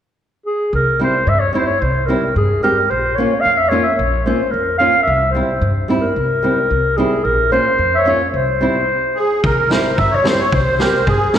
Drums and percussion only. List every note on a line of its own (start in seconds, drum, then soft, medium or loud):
9.44 kick medium
9.71 snare medium
9.98 kick medium
10.25 snare medium
10.52 kick medium
10.80 snare medium
11.07 kick medium
11.34 snare medium